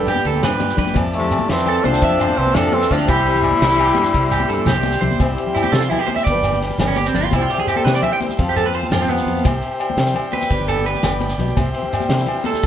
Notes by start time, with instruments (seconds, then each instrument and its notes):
Already playing: fingered electric bass G2, steel-string acoustic guitar G2 G3 F4 B4, transistor combo organ D5 G5 B5
0.07 steel-string acoustic guitar B3, clean electric guitar G4, ride, low agogo, shekere
0.15 muted conga, low conga
0.25 fingered electric bass D2, steel-string acoustic guitar D4, clean electric guitar A4, ride
0.33 steel-string acoustic guitar F4, high conga, low conga
0.42 fingered electric bass G2, steel-string acoustic guitar C3, clean electric guitar B4, snare, ride, low conga, low agogo, shekere
0.60 steel-string acoustic guitar D3, ride, muted conga
0.70 shekere
0.77 fingered electric bass G2, clean electric guitar B4, kick, ride, low conga, shekere
0.82 steel-string acoustic guitar E3
0.87 high conga, shekere
0.94 fingered electric bass F2, steel-string acoustic guitar F3, transistor combo organ E5 A5, kick, ride, muted conga, low agogo, shekere
1.12 duduk A3, steel-string acoustic guitar E4, ride, low conga
1.18 tenor saxophone C3, low conga
1.31 steel-string acoustic guitar A4, ride, low agogo, shekere
1.39 muted conga, high conga
1.49 fingered electric bass F2, tenor saxophone E3, duduk C4, steel-string acoustic guitar A4, snare, ride
1.58 shekere
1.66 steel-string acoustic guitar A4, clean electric guitar A4, ride, low conga, low agogo
1.84 fingered electric bass C2, tenor saxophone F3, steel-string acoustic guitar C4, duduk D4, clean electric guitar C5, ride, muted conga
1.93 high conga, low conga, shekere
2.02 fingered electric bass F2, steel-string acoustic guitar F3, clean electric guitar E5, kick, ride
2.09 low conga
2.19 steel-string acoustic guitar E4, clean electric guitar C5, ride, low agogo, shekere
2.29 muted conga, low conga
2.37 fingered electric bass C2, tenor saxophone E3, duduk C4, steel-string acoustic guitar A4, ride
2.46 high conga, low conga
2.54 fingered electric bass F2, tenor saxophone F3, duduk D4, steel-string acoustic guitar G4, clean electric guitar A4, snare, ride, low conga, low agogo, shekere
2.66 steel-string acoustic guitar A4
2.72 tenor saxophone E3, duduk C4, steel-string acoustic guitar A4, ride, muted conga
2.82 shekere
2.91 fingered electric bass D2, tenor saxophone F3, steel-string acoustic guitar C4, duduk D4, clean electric guitar F4, kick, ride, shekere
2.99 high conga, shekere
3.07 fingered electric bass C2, steel-string acoustic guitar C3, tenor saxophone G3, duduk E4, clean electric guitar G4, transistor combo organ D5 C6, kick, ride, muted conga, low agogo, shekere
3.18 shekere
3.27 steel-string acoustic guitar D4, ride
3.35 low conga, shekere
3.42 ride, low conga, low agogo, shekere
3.47 steel-string acoustic guitar D4
3.52 muted conga, high conga, low conga
3.61 fingered electric bass C2, steel-string acoustic guitar D4, clean electric guitar E4, snare, ride, low conga
3.69 shekere
3.77 clean electric guitar G4, ride, low conga, low agogo
3.83 steel-string acoustic guitar D4, low conga
3.95 fingered electric bass G2, muted clean electric guitar stroke, ride, muted conga, low conga
3.99 steel-string acoustic guitar G3
4.04 high conga, shekere
4.13 fingered electric bass C2, steel-string acoustic guitar C3, kick, ride, low conga
4.31 clean electric guitar G4, ride, low agogo, shekere
4.40 muted conga
4.49 fingered electric bass G2, clean electric guitar A4, ride, shekere
4.53 steel-string acoustic guitar D4
4.58 high conga, low conga
4.65 fingered electric bass C2, steel-string acoustic guitar D4, clean electric guitar G4, snare, ride, low conga, low agogo, shekere
4.74 shekere
4.83 steel-string acoustic guitar E4, ride, muted conga, shekere
4.92 shekere
5.01 fingered electric bass C2, steel-string acoustic guitar G3, clean electric guitar C5, ride, low conga
5.11 high conga, low conga, shekere
5.19 fingered electric bass C2, steel-string acoustic guitar C3 G3 C4, transistor combo organ E5 G5 C6, kick, ride, muted conga, low conga, low agogo, shekere
5.24 steel-string acoustic guitar E4 G4
5.38 steel-string acoustic guitar C4, ride
5.47 low conga
5.55 steel-string acoustic guitar G3, clean electric guitar E4, ride, low agogo, shekere
5.63 clean electric guitar G4, muted conga, high conga
5.72 fingered electric bass C3, steel-string acoustic guitar C3, clean electric guitar A4, snare, ride
5.81 clean electric guitar F4, shekere
5.90 steel-string acoustic guitar B2, clean electric guitar E4, ride, low conga, low agogo
5.99 clean electric guitar G4, low conga
6.06 steel-string acoustic guitar A2, clean electric guitar C5, ride, muted conga, low conga
6.16 clean electric guitar E5, high conga, shekere
6.24 fingered electric bass G1, clean electric guitar D5, transistor combo organ G5 B5, muted steel-string acoustic guitar stroke, kick, ride
6.29 steel-string acoustic guitar G3 D4 B4, transistor combo organ D5
6.35 low conga
6.43 muted steel-string acoustic guitar stroke, ride, low agogo, shekere
6.52 muted conga, low conga, shekere
6.62 steel-string acoustic guitar G3, snare, ride, low conga, shekere
6.70 high conga, shekere
6.78 fingered electric bass G1, steel-string acoustic guitar G2, snare, ride, low conga, low agogo, shekere
6.87 clean electric guitar C#4
6.96 clean electric guitar G4, muted steel-string acoustic guitar stroke, ride, muted conga
7.06 clean electric guitar C4, shekere
7.14 fingered electric bass G1, clean electric guitar D4, ride, low conga, shekere
7.23 clean electric guitar F4, high conga, low conga, shekere
7.31 fingered electric bass C2, steel-string acoustic guitar C3 G3, clean electric guitar E4, transistor combo organ E5 C6, kick, ride, muted conga, low conga, low agogo, shekere
7.36 steel-string acoustic guitar C4
7.42 clean electric guitar F4
7.50 steel-string acoustic guitar C4, clean electric guitar G4, ride
7.58 clean electric guitar G#4, low conga
7.67 steel-string acoustic guitar G3, clean electric guitar G4, ride, low agogo, shekere
7.76 clean electric guitar A4, muted conga, high conga
7.85 fingered electric bass C3, steel-string acoustic guitar E4, clean electric guitar B4, snare, ride
7.94 clean electric guitar D5, shekere
8.03 steel-string acoustic guitar G2, clean electric guitar E5, ride, low conga, low agogo
8.12 clean electric guitar G5, low conga
8.21 steel-string acoustic guitar C4, ride, muted conga, low conga
8.29 high conga, shekere
8.38 fingered electric bass F2, steel-string acoustic guitar F3 C4 F4 A4, transistor combo organ F5 A5, kick, ride
8.47 clean electric guitar G4, low conga
8.56 steel-string acoustic guitar F4, clean electric guitar A4, ride, low agogo, shekere
8.64 clean electric guitar B4, muted conga, low conga
8.74 steel-string acoustic guitar C4, clean electric guitar C5, ride, shekere
8.83 high conga, shekere
8.90 fingered electric bass F2, steel-string acoustic guitar C4, clean electric guitar F4, snare, ride, low conga, low agogo, shekere
9.02 clean electric guitar C4
9.08 steel-string acoustic guitar C3, clean electric guitar B3, ride, muted conga
9.18 shekere
9.26 fingered electric bass F2, ride, low conga, shekere
9.35 high conga, low conga, shekere
9.43 fingered electric bass C2, steel-string acoustic guitar C3, transistor combo organ E5 G5, kick, ride, muted conga, low conga, low agogo, shekere
9.62 steel-string acoustic guitar C4, ride
9.80 steel-string acoustic guitar G3, ride, low agogo
9.90 muted conga, high conga
9.97 fingered electric bass C3, steel-string acoustic guitar E4, snare, ride
10.07 shekere
10.14 steel-string acoustic guitar G2, ride, low conga, low agogo
10.24 low conga
10.33 steel-string acoustic guitar C4, clean electric guitar B4, ride, muted conga, low conga
10.42 high conga, shekere
10.50 fingered electric bass G1, steel-string acoustic guitar G2, transistor combo organ D5 B5, kick, ride
10.60 low conga
10.68 steel-string acoustic guitar B3, clean electric guitar A4, ride, low agogo, shekere
10.77 muted conga, low conga, shekere
10.86 steel-string acoustic guitar G3, clean electric guitar B4, ride, low conga, shekere
10.95 high conga, shekere
11.03 fingered electric bass G1, steel-string acoustic guitar G2, snare, ride, low conga, low agogo, shekere
11.20 steel-string acoustic guitar A2, ride, muted conga
11.30 shekere
11.38 fingered electric bass B1, steel-string acoustic guitar B2, ride, low conga, shekere
11.48 high conga, low conga, shekere
11.57 fingered electric bass C2, steel-string acoustic guitar C3, transistor combo organ E5 C6, kick, ride, muted conga, low agogo, shekere
11.74 steel-string acoustic guitar C4, ride, low conga
11.83 low conga
11.93 steel-string acoustic guitar G3, ride, low agogo, shekere
12.00 muted conga, high conga, shekere
12.09 fingered electric bass C3, snare, ride, shekere
12.13 steel-string acoustic guitar D4
12.19 steel-string acoustic guitar E4, low conga, shekere
12.26 ride, low conga, low agogo
12.30 steel-string acoustic guitar G2
12.36 low conga
12.44 clean electric guitar A4, ride, muted conga
12.48 muted steel-string acoustic guitar stroke
12.54 high conga, shekere
12.63 transistor combo organ A5, kick, ride